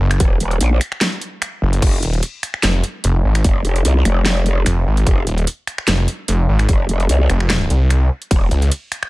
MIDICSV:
0, 0, Header, 1, 4, 480
1, 0, Start_track
1, 0, Tempo, 405405
1, 238, Time_signature, 4, 2, 24, 8
1, 10770, End_track
2, 0, Start_track
2, 0, Title_t, "Detuned saw bass"
2, 0, Program_c, 0, 39
2, 0, Note_on_c, 0, 30, 91
2, 220, Note_off_c, 0, 30, 0
2, 1918, Note_on_c, 0, 30, 99
2, 2140, Note_off_c, 0, 30, 0
2, 2398, Note_on_c, 0, 27, 98
2, 2621, Note_off_c, 0, 27, 0
2, 3118, Note_on_c, 0, 29, 93
2, 3340, Note_off_c, 0, 29, 0
2, 3598, Note_on_c, 0, 29, 103
2, 3821, Note_off_c, 0, 29, 0
2, 3839, Note_on_c, 0, 32, 93
2, 4061, Note_off_c, 0, 32, 0
2, 5519, Note_on_c, 0, 29, 99
2, 5741, Note_off_c, 0, 29, 0
2, 5759, Note_on_c, 0, 32, 99
2, 5981, Note_off_c, 0, 32, 0
2, 6238, Note_on_c, 0, 27, 96
2, 6460, Note_off_c, 0, 27, 0
2, 6958, Note_on_c, 0, 29, 96
2, 7180, Note_off_c, 0, 29, 0
2, 7438, Note_on_c, 0, 29, 101
2, 7660, Note_off_c, 0, 29, 0
2, 7678, Note_on_c, 0, 32, 97
2, 7900, Note_off_c, 0, 32, 0
2, 8637, Note_on_c, 0, 29, 97
2, 9100, Note_off_c, 0, 29, 0
2, 9118, Note_on_c, 0, 36, 95
2, 9580, Note_off_c, 0, 36, 0
2, 10077, Note_on_c, 0, 37, 97
2, 10300, Note_off_c, 0, 37, 0
2, 10770, End_track
3, 0, Start_track
3, 0, Title_t, "Wobble bass"
3, 0, Program_c, 1, 39
3, 238, Note_on_c, 1, 27, 102
3, 461, Note_off_c, 1, 27, 0
3, 479, Note_on_c, 1, 27, 101
3, 701, Note_off_c, 1, 27, 0
3, 719, Note_on_c, 1, 34, 94
3, 941, Note_off_c, 1, 34, 0
3, 2157, Note_on_c, 1, 29, 98
3, 2380, Note_off_c, 1, 29, 0
3, 4078, Note_on_c, 1, 29, 100
3, 4300, Note_off_c, 1, 29, 0
3, 4317, Note_on_c, 1, 29, 103
3, 4540, Note_off_c, 1, 29, 0
3, 4558, Note_on_c, 1, 36, 94
3, 4780, Note_off_c, 1, 36, 0
3, 4798, Note_on_c, 1, 29, 95
3, 5501, Note_off_c, 1, 29, 0
3, 5998, Note_on_c, 1, 29, 93
3, 6220, Note_off_c, 1, 29, 0
3, 7917, Note_on_c, 1, 29, 99
3, 8140, Note_off_c, 1, 29, 0
3, 8158, Note_on_c, 1, 29, 102
3, 8380, Note_off_c, 1, 29, 0
3, 8398, Note_on_c, 1, 36, 96
3, 8620, Note_off_c, 1, 36, 0
3, 9838, Note_on_c, 1, 27, 99
3, 10060, Note_off_c, 1, 27, 0
3, 10770, End_track
4, 0, Start_track
4, 0, Title_t, "Drums"
4, 127, Note_on_c, 9, 26, 88
4, 127, Note_on_c, 9, 42, 40
4, 238, Note_off_c, 9, 42, 0
4, 238, Note_on_c, 9, 36, 126
4, 238, Note_on_c, 9, 42, 84
4, 245, Note_off_c, 9, 26, 0
4, 356, Note_off_c, 9, 42, 0
4, 357, Note_off_c, 9, 36, 0
4, 478, Note_on_c, 9, 42, 57
4, 597, Note_off_c, 9, 42, 0
4, 607, Note_on_c, 9, 42, 40
4, 717, Note_off_c, 9, 42, 0
4, 717, Note_on_c, 9, 42, 85
4, 836, Note_off_c, 9, 42, 0
4, 958, Note_on_c, 9, 26, 56
4, 958, Note_on_c, 9, 42, 55
4, 1076, Note_off_c, 9, 26, 0
4, 1076, Note_off_c, 9, 42, 0
4, 1087, Note_on_c, 9, 26, 62
4, 1197, Note_on_c, 9, 38, 113
4, 1197, Note_on_c, 9, 39, 93
4, 1197, Note_on_c, 9, 42, 83
4, 1205, Note_off_c, 9, 26, 0
4, 1316, Note_off_c, 9, 38, 0
4, 1316, Note_off_c, 9, 39, 0
4, 1316, Note_off_c, 9, 42, 0
4, 1438, Note_on_c, 9, 42, 57
4, 1557, Note_off_c, 9, 42, 0
4, 1678, Note_on_c, 9, 26, 81
4, 1678, Note_on_c, 9, 42, 83
4, 1797, Note_off_c, 9, 26, 0
4, 1797, Note_off_c, 9, 42, 0
4, 2048, Note_on_c, 9, 42, 42
4, 2158, Note_off_c, 9, 42, 0
4, 2158, Note_on_c, 9, 36, 127
4, 2158, Note_on_c, 9, 42, 83
4, 2158, Note_on_c, 9, 49, 78
4, 2276, Note_off_c, 9, 36, 0
4, 2277, Note_off_c, 9, 42, 0
4, 2277, Note_off_c, 9, 49, 0
4, 2398, Note_on_c, 9, 42, 57
4, 2517, Note_off_c, 9, 42, 0
4, 2527, Note_on_c, 9, 42, 43
4, 2637, Note_off_c, 9, 42, 0
4, 2637, Note_on_c, 9, 42, 86
4, 2755, Note_off_c, 9, 42, 0
4, 2878, Note_on_c, 9, 26, 50
4, 2878, Note_on_c, 9, 42, 57
4, 2996, Note_off_c, 9, 26, 0
4, 2996, Note_off_c, 9, 42, 0
4, 3006, Note_on_c, 9, 26, 60
4, 3117, Note_on_c, 9, 38, 116
4, 3117, Note_on_c, 9, 39, 92
4, 3117, Note_on_c, 9, 42, 86
4, 3125, Note_off_c, 9, 26, 0
4, 3236, Note_off_c, 9, 38, 0
4, 3236, Note_off_c, 9, 39, 0
4, 3236, Note_off_c, 9, 42, 0
4, 3358, Note_on_c, 9, 42, 55
4, 3476, Note_off_c, 9, 42, 0
4, 3598, Note_on_c, 9, 42, 84
4, 3716, Note_off_c, 9, 42, 0
4, 3967, Note_on_c, 9, 26, 76
4, 3967, Note_on_c, 9, 42, 42
4, 4078, Note_off_c, 9, 42, 0
4, 4078, Note_on_c, 9, 36, 127
4, 4078, Note_on_c, 9, 42, 85
4, 4086, Note_off_c, 9, 26, 0
4, 4196, Note_off_c, 9, 42, 0
4, 4197, Note_off_c, 9, 36, 0
4, 4318, Note_on_c, 9, 42, 55
4, 4437, Note_off_c, 9, 42, 0
4, 4448, Note_on_c, 9, 42, 39
4, 4558, Note_off_c, 9, 42, 0
4, 4558, Note_on_c, 9, 42, 80
4, 4676, Note_off_c, 9, 42, 0
4, 4799, Note_on_c, 9, 26, 51
4, 4799, Note_on_c, 9, 42, 56
4, 4917, Note_off_c, 9, 26, 0
4, 4917, Note_off_c, 9, 42, 0
4, 5038, Note_on_c, 9, 38, 121
4, 5038, Note_on_c, 9, 39, 88
4, 5038, Note_on_c, 9, 42, 80
4, 5157, Note_off_c, 9, 38, 0
4, 5157, Note_off_c, 9, 39, 0
4, 5157, Note_off_c, 9, 42, 0
4, 5279, Note_on_c, 9, 42, 55
4, 5397, Note_off_c, 9, 42, 0
4, 5518, Note_on_c, 9, 26, 77
4, 5518, Note_on_c, 9, 42, 86
4, 5636, Note_off_c, 9, 26, 0
4, 5636, Note_off_c, 9, 42, 0
4, 5887, Note_on_c, 9, 42, 41
4, 5998, Note_off_c, 9, 42, 0
4, 5998, Note_on_c, 9, 36, 127
4, 5998, Note_on_c, 9, 42, 84
4, 6116, Note_off_c, 9, 36, 0
4, 6116, Note_off_c, 9, 42, 0
4, 6238, Note_on_c, 9, 42, 51
4, 6356, Note_off_c, 9, 42, 0
4, 6367, Note_on_c, 9, 42, 40
4, 6479, Note_off_c, 9, 42, 0
4, 6479, Note_on_c, 9, 42, 76
4, 6597, Note_off_c, 9, 42, 0
4, 6718, Note_on_c, 9, 26, 51
4, 6718, Note_on_c, 9, 42, 52
4, 6837, Note_off_c, 9, 26, 0
4, 6837, Note_off_c, 9, 42, 0
4, 6847, Note_on_c, 9, 26, 64
4, 6958, Note_on_c, 9, 38, 125
4, 6958, Note_on_c, 9, 39, 91
4, 6958, Note_on_c, 9, 42, 73
4, 6966, Note_off_c, 9, 26, 0
4, 7076, Note_off_c, 9, 38, 0
4, 7076, Note_off_c, 9, 39, 0
4, 7076, Note_off_c, 9, 42, 0
4, 7198, Note_on_c, 9, 42, 54
4, 7316, Note_off_c, 9, 42, 0
4, 7437, Note_on_c, 9, 42, 80
4, 7556, Note_off_c, 9, 42, 0
4, 7806, Note_on_c, 9, 26, 78
4, 7806, Note_on_c, 9, 42, 37
4, 7917, Note_off_c, 9, 42, 0
4, 7917, Note_on_c, 9, 36, 127
4, 7917, Note_on_c, 9, 42, 81
4, 7925, Note_off_c, 9, 26, 0
4, 8036, Note_off_c, 9, 36, 0
4, 8036, Note_off_c, 9, 42, 0
4, 8157, Note_on_c, 9, 42, 48
4, 8276, Note_off_c, 9, 42, 0
4, 8287, Note_on_c, 9, 42, 35
4, 8398, Note_off_c, 9, 42, 0
4, 8398, Note_on_c, 9, 42, 80
4, 8516, Note_off_c, 9, 42, 0
4, 8638, Note_on_c, 9, 26, 53
4, 8638, Note_on_c, 9, 42, 52
4, 8756, Note_off_c, 9, 26, 0
4, 8756, Note_off_c, 9, 42, 0
4, 8767, Note_on_c, 9, 26, 66
4, 8878, Note_on_c, 9, 38, 123
4, 8878, Note_on_c, 9, 39, 89
4, 8878, Note_on_c, 9, 42, 73
4, 8885, Note_off_c, 9, 26, 0
4, 8997, Note_off_c, 9, 38, 0
4, 8997, Note_off_c, 9, 39, 0
4, 8997, Note_off_c, 9, 42, 0
4, 9119, Note_on_c, 9, 42, 53
4, 9238, Note_off_c, 9, 42, 0
4, 9359, Note_on_c, 9, 26, 81
4, 9359, Note_on_c, 9, 42, 78
4, 9477, Note_off_c, 9, 26, 0
4, 9477, Note_off_c, 9, 42, 0
4, 9728, Note_on_c, 9, 42, 37
4, 9838, Note_on_c, 9, 36, 127
4, 9839, Note_off_c, 9, 42, 0
4, 9839, Note_on_c, 9, 42, 80
4, 9839, Note_on_c, 9, 51, 66
4, 9957, Note_off_c, 9, 36, 0
4, 9957, Note_off_c, 9, 42, 0
4, 9957, Note_off_c, 9, 51, 0
4, 10078, Note_on_c, 9, 42, 51
4, 10197, Note_off_c, 9, 42, 0
4, 10208, Note_on_c, 9, 42, 38
4, 10319, Note_off_c, 9, 42, 0
4, 10319, Note_on_c, 9, 42, 79
4, 10319, Note_on_c, 9, 51, 50
4, 10438, Note_off_c, 9, 42, 0
4, 10438, Note_off_c, 9, 51, 0
4, 10558, Note_on_c, 9, 26, 56
4, 10558, Note_on_c, 9, 42, 52
4, 10676, Note_off_c, 9, 26, 0
4, 10676, Note_off_c, 9, 42, 0
4, 10687, Note_on_c, 9, 26, 67
4, 10770, Note_off_c, 9, 26, 0
4, 10770, End_track
0, 0, End_of_file